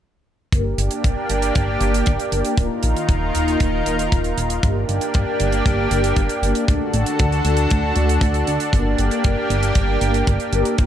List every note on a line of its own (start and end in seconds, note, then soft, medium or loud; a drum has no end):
0.52 0.75 G1 loud
0.52 2.56 A#3 medium
0.52 1.78 A#3 medium
0.52 2.56 D4 medium
0.52 1.78 D4 medium
0.52 2.56 G4 loud
0.52 1.78 G4 medium
0.52 1.78 A#4 medium
0.52 kick loud
0.52 closed hi-hat medium
0.78 0.89 G1 medium
0.78 closed hi-hat medium
0.91 closed hi-hat medium
1.04 1.15 G1 medium
1.04 kick loud
1.04 closed hi-hat medium
1.29 1.52 G1 medium
1.29 closed hi-hat medium
1.42 closed hi-hat medium
1.55 1.78 G1 loud
1.55 kick loud
1.55 closed hi-hat medium
1.81 2.03 G1 medium
1.81 2.11 A#3 medium
1.81 2.11 D4 medium
1.81 2.11 G4 medium
1.81 2.11 A#4 loud
1.81 closed hi-hat medium
1.94 closed hi-hat medium
2.06 2.18 G1 loud
2.06 kick loud
2.06 closed hi-hat medium
2.20 closed hi-hat medium
2.32 2.43 G1 medium
2.32 2.55 A#3 medium
2.32 2.55 D4 medium
2.32 2.55 G4 medium
2.32 2.55 A#4 loud
2.32 closed hi-hat medium
2.45 closed hi-hat medium
2.58 2.69 D#1 medium
2.58 4.61 D#3 medium
2.58 3.83 A#3 medium
2.58 4.61 D#4 medium
2.58 3.83 D#4 medium
2.58 4.61 F4 medium
2.58 3.83 F4 medium
2.58 4.61 A#4 medium
2.58 3.83 A#4 loud
2.58 kick loud
2.58 closed hi-hat medium
2.83 2.95 A#1 loud
2.83 closed hi-hat medium
2.97 closed hi-hat medium
3.09 3.31 D#1 medium
3.09 kick loud
3.09 closed hi-hat medium
3.35 3.57 D#1 medium
3.35 closed hi-hat medium
3.48 closed hi-hat medium
3.60 3.83 D#1 medium
3.60 kick loud
3.60 closed hi-hat medium
3.86 4.08 D#1 medium
3.86 4.60 A#3 medium
3.86 4.60 D#4 medium
3.86 4.60 F4 medium
3.86 4.60 A#4 medium
3.86 closed hi-hat medium
3.99 closed hi-hat medium
4.12 4.34 D#1 medium
4.12 kick loud
4.12 closed hi-hat medium
4.24 closed hi-hat medium
4.37 4.60 D#1 medium
4.37 closed hi-hat medium
4.50 closed hi-hat medium
4.63 4.85 G1 loud
4.63 6.66 A#3 medium
4.63 5.88 A#3 medium
4.63 6.66 D4 medium
4.63 5.88 D4 medium
4.63 6.66 G4 medium
4.63 5.88 G4 medium
4.63 5.88 A#4 medium
4.63 kick loud
4.63 closed hi-hat medium
4.89 5.00 G1 medium
4.89 closed hi-hat medium
5.01 closed hi-hat medium
5.14 5.26 G1 medium
5.14 kick loud
5.14 closed hi-hat medium
5.40 5.62 G1 medium
5.40 closed hi-hat medium
5.52 closed hi-hat medium
5.66 5.88 G1 medium
5.66 kick loud
5.66 closed hi-hat medium
5.91 6.13 G1 medium
5.91 6.21 A#3 medium
5.91 6.21 D4 medium
5.91 6.21 G4 medium
5.91 6.21 A#4 medium
5.91 closed hi-hat medium
6.04 closed hi-hat medium
6.16 6.28 G1 loud
6.16 kick loud
6.16 closed hi-hat medium
6.29 closed hi-hat medium
6.42 6.53 G1 medium
6.42 6.65 A#3 medium
6.42 6.65 D4 medium
6.42 6.65 G4 medium
6.42 6.65 A#4 loud
6.42 closed hi-hat medium
6.55 closed hi-hat medium
6.68 6.79 D2 medium
6.68 8.71 D3 medium
6.68 7.93 A3 medium
6.68 7.93 D4 medium
6.68 10.74 D4 medium
6.68 7.93 F#4 medium
6.68 8.71 F#4 medium
6.68 8.71 A4 loud
6.68 7.93 A4 medium
6.68 kick loud
6.68 closed hi-hat medium
6.94 7.05 A1 loud
6.94 closed hi-hat medium
7.06 closed hi-hat medium
7.19 7.42 D2 medium
7.19 kick loud
7.19 closed hi-hat medium
7.32 closed hi-hat soft
7.45 7.67 D2 medium
7.45 closed hi-hat medium
7.57 closed hi-hat medium
7.70 7.93 D2 medium
7.70 kick loud
7.70 closed hi-hat medium
7.96 8.19 D2 medium
7.96 8.70 A3 medium
7.96 8.70 D4 medium
7.96 8.70 F#4 medium
7.96 8.70 A4 medium
7.96 closed hi-hat medium
8.09 closed hi-hat medium
8.21 8.44 D2 loud
8.21 kick loud
8.21 closed hi-hat medium
8.34 closed hi-hat soft
8.47 8.59 D2 medium
8.47 closed hi-hat medium
8.60 closed hi-hat medium
8.73 8.95 G1 loud
8.73 10.76 A#3 medium
8.73 9.98 A#3 medium
8.73 9.98 D4 medium
8.73 10.76 G4 loud
8.73 9.98 G4 medium
8.73 9.98 A#4 medium
8.73 kick loud
8.73 closed hi-hat medium
8.99 9.10 G1 medium
8.99 closed hi-hat medium
9.11 closed hi-hat medium
9.24 9.36 G1 medium
9.24 kick loud
9.24 closed hi-hat medium
9.50 9.72 G1 medium
9.50 closed hi-hat medium
9.63 closed hi-hat medium
9.75 9.98 G1 loud
9.75 kick loud
9.75 closed hi-hat medium
10.01 10.24 G1 medium
10.01 10.32 A#3 medium
10.01 10.32 D4 medium
10.01 10.32 G4 medium
10.01 10.32 A#4 loud
10.01 closed hi-hat medium
10.14 closed hi-hat medium
10.27 10.38 G1 loud
10.27 kick loud
10.27 closed hi-hat medium
10.40 closed hi-hat medium
10.53 10.64 G1 medium
10.53 10.75 A#3 loud
10.53 10.75 D4 medium
10.53 10.75 G4 medium
10.53 10.75 A#4 loud
10.53 closed hi-hat medium
10.65 closed hi-hat medium
10.78 10.86 D#1 medium
10.78 10.86 D#3 medium
10.78 10.86 A#3 medium
10.78 10.86 D#4 medium
10.78 10.86 F4 medium
10.78 10.86 A#4 medium
10.78 10.86 A#4 loud
10.78 kick loud
10.78 closed hi-hat medium